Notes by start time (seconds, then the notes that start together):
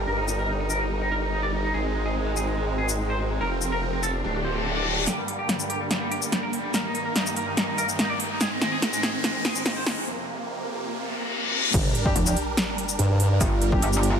Already playing: G3 A#4
0.07 G1 D#4 A#4
0.18 D#4
0.28 D#4, shaker
0.39 A#4
0.49 D#4
0.60 D#4
0.70 A#4, shaker
0.81 D#4
0.91 D#4
1.01 D#4
1.12 A#4
1.22 D#4
1.32 D#4
1.43 D5
1.53 D#4
1.64 D#4
1.74 G#1 G#3 C4 G#4
1.85 G#3
1.95 G#3
2.06 G#4
2.16 G#3
2.26 G#3
2.37 G#4, shaker
2.47 G#3
2.57 G#3
2.68 G#3
2.78 G#4
2.89 G#3, shaker
2.99 G#3
3.10 C5
3.20 G#3
3.31 G#3
3.41 F1 F3 A#4
3.51 C4
3.62 C4, shaker
3.72 A#4
3.82 C4
3.93 C4
4.03 A4, shaker
4.14 D4
4.24 D1 D3 A3 D4 G4, reverse cymbal
4.35 D4
4.45 C5
4.55 D4
4.66 D4
4.76 D5
4.86 D4
4.97 D4
5.07 G2 D3 A#3 G4, snare, closed hi-hat, riser, shaker
5.18 G3
5.28 G3, closed hi-hat
5.39 G4
5.49 G3, snare, closed hi-hat
5.60 G3, shaker
5.70 G4, closed hi-hat
5.81 G3
5.91 G3, snare, closed hi-hat
6.01 G3
6.11 G4, closed hi-hat
6.22 G3, shaker
6.32 G3, snare, closed hi-hat
6.43 A#4
6.53 G3, open hi-hat
6.64 G3
6.74 G2 D#3 A#4, snare, closed hi-hat, shaker
6.85 D#4
6.95 D#4, closed hi-hat
7.05 A#4
7.16 D#4, snare, closed hi-hat
7.26 D#4, shaker
7.36 A#4, closed hi-hat
7.47 D#4
7.57 D#4, snare, closed hi-hat
7.68 D#4
7.78 A#4, closed hi-hat, shaker
7.89 D#4, shaker
7.99 D#4, snare, closed hi-hat
8.10 D5
8.20 D#4, open hi-hat
8.31 D#4
8.41 G#2 D#3 C4 G#4, snare, closed hi-hat, shaker
8.51 G#3
8.61 G#3, snare, closed hi-hat
8.72 G#4
8.82 G#3, snare, closed hi-hat
8.93 G#3, shaker
9.03 G#4, snare, closed hi-hat
9.14 G#3
9.24 G#3, snare, closed hi-hat
9.35 G#3
9.45 G#4, snare, closed hi-hat
9.55 G#3, shaker
9.66 G#3, snare, closed hi-hat
9.76 C5
9.86 G#3, snare, open hi-hat
9.97 G#3
10.07 F2 C3 A#3
10.91 reverse cymbal
11.74 G1 G3 D4 A#4, kick, closed hi-hat, crash, sub drop, shaker
11.95 closed hi-hat
12.06 G3 D4 G4, kick
12.16 F1, closed hi-hat
12.26 G3 D4 G4, shaker
12.37 closed hi-hat
12.57 snare, closed hi-hat
12.78 closed hi-hat
12.89 closed hi-hat, shaker
12.99 G2, closed hi-hat
13.20 open hi-hat
13.41 G1, kick, closed hi-hat, shaker
13.62 closed hi-hat
13.72 G3 D4 G4, kick
13.82 G1, closed hi-hat
13.93 G3 D4 G4, shaker
14.03 closed hi-hat